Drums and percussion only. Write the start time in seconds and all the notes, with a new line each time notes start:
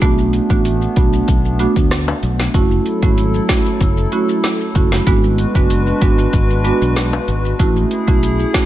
0.02 kick, closed hi-hat, maracas
0.18 maracas
0.33 closed hi-hat, maracas
0.50 kick, maracas
0.65 closed hi-hat, maracas
0.82 maracas
0.96 kick, closed hi-hat
1.13 maracas
1.28 kick, closed hi-hat, maracas
1.45 maracas
1.59 closed hi-hat, maracas
1.76 kick, maracas
1.91 cross-stick, snare, closed hi-hat, maracas
2.08 high timbale, maracas
2.23 closed hi-hat, maracas
2.40 snare, maracas
2.54 kick, closed hi-hat, maracas
2.71 maracas
2.86 closed hi-hat
3.03 kick, maracas
3.18 closed hi-hat, maracas
3.34 maracas
3.49 kick, snare, closed hi-hat, maracas
3.66 maracas
3.81 kick, closed hi-hat, maracas
3.97 maracas
4.12 closed hi-hat
4.29 maracas
4.44 snare, closed hi-hat, maracas
4.61 maracas
4.75 kick, closed hi-hat, maracas
4.92 snare, maracas
5.07 kick, closed hi-hat, maracas
5.24 maracas
5.38 closed hi-hat
5.55 kick, maracas
5.70 closed hi-hat, maracas
5.87 maracas
6.01 kick, closed hi-hat, maracas
6.18 maracas
6.33 kick, closed hi-hat, maracas
6.50 maracas
6.65 closed hi-hat
6.82 maracas
6.96 snare, closed hi-hat, maracas
7.13 high timbale, maracas
7.28 closed hi-hat, maracas
7.45 maracas
7.60 kick, closed hi-hat, maracas
7.76 maracas
7.91 closed hi-hat
8.08 kick, maracas
8.23 closed hi-hat, maracas
8.39 maracas
8.54 kick, snare, closed hi-hat, maracas